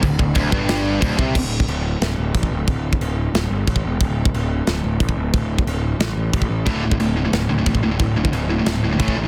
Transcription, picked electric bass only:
\new Staff \with { instrumentName = "Picked electric bass" } { \clef bass \time 4/4 \key a \phrygian \tempo 4 = 180 d,,8 d,,8 d,,8 g,,4. d,,8 c,8 | d,,4 d,,4 d,,8 d,,8 a,,8 d,,8 | d,,4 d,,4 d,,8 g,,8 a,,8 e,,8 | d,,4 d,,4 d,,8 d,,8 a,,8 d,,8 |
d,,4 d,,4 a,,8 a,,8 a,,8 a,,8 | d,,4 d,,4 d,,8 d,,8 a,,8 d,,8 | d,,4 d,,4 d,,8 d,,8 a,,8 a,,8 | }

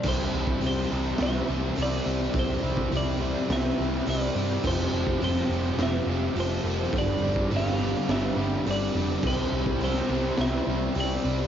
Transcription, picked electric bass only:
\new Staff \with { instrumentName = "Picked electric bass" } { \clef bass \time 4/4 \key c \major \tempo 4 = 105 c,8 c,8 c,8 c,8 c,8 c,8 c,8 c,8 | c,8 c,8 c,4 c,8 c,8 c,8 g,8 | f,,8 f,,8 f,,8 f,,8 f,,8 f,,8 f,,8 f,,8 | g,,8 g,,8 g,,4 g,,8 g,,8 g,,8 f,,8 |
c,8 c,8 c,8 c,8 c,8 c,8 c,8 c,8 | }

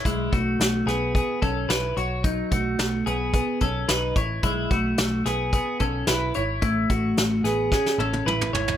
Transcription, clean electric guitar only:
\new Staff \with { instrumentName = "Clean electric guitar" } { \time 4/4 \key e \major \tempo 4 = 110 <gis e'>8 <a fis'>4 <b gis'>8 <b gis'>8 <cis' a'>8 <e' b'>8 <fis' cis''>8 | <fis dis'>8 <a fis'>4 <b gis'>8 <b gis'>8 <cis' a'>8 <dis' b'>8 <e' cis''>8 | <gis e'>8 <a fis'>4 <b gis'>8 <b gis'>8 <cis' a'>8 <e' b'>8 <e' cis''>8 | <a e'>8 <a fis'>4 <b gis'>8 <cis' gis'>8 <cis' a'>8 <e' b'>8 <e' cis''>8 | }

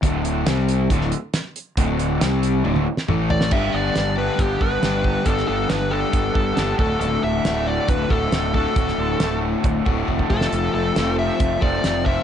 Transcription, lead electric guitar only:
\new Staff \with { instrumentName = "Lead electric guitar" } { \time 4/4 \key g \major \tempo 4 = 137 r1 | r2. r8 d''8 | e''8 d''4 b'8 g'8 b'4. | a'8 a'8 b'8 a'2 a'8 |
a'8 e''4 d''8 b'8 a'4 a'8~ | a'4. r2 a'8~ | a'8 a'4 e''4 d''4 e''8 | }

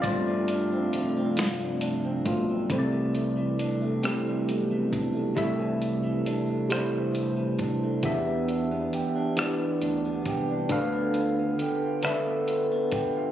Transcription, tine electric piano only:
\new Staff \with { instrumentName = "Tine electric piano" } { \time 6/8 \key c \major \tempo 4. = 45 << { d''2 r4 | <c g a e' c'' d''>4 r8 <g a c' e' g'>4 r8 | <c g a e' e''>4 r8 <c g a d' e' c''>4 r8 | <e b d' g' e''>4 r8 <e b d' g' d''>4 r8 |
<d d' a' b' f''>4 r8 <d d' a' b' e''>4 r8 | } \\ { <a c' f'>4. r4 <a c' f'>8 | r2. | r2. | r2. |
r2. | } >> }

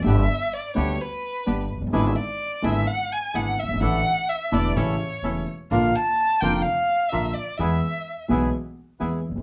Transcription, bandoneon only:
\new Staff \with { instrumentName = "Bandoneon" } { \time 4/4 \key e \dorian \tempo 4 = 128 <b d' g'>8 r4 <b d' g'>8 r4 <b d' g'>8 r8 | <d' e' gis'>8 r4 <d' e' gis'>8 r4 <d' e' gis'>8 r8 | <d' e' a'>8 r4 <d' e' a'>8 <cis' e' a'>8 r8 <cis' e' a'>8 r8 | <d' f' bes'>8 r4 <d' f' bes'>8 r4 <d' f' bes'>8 r8 |
<b e' gis'>8 r4 <b e' gis'>8 r4 <b e' gis'>8 r8 | }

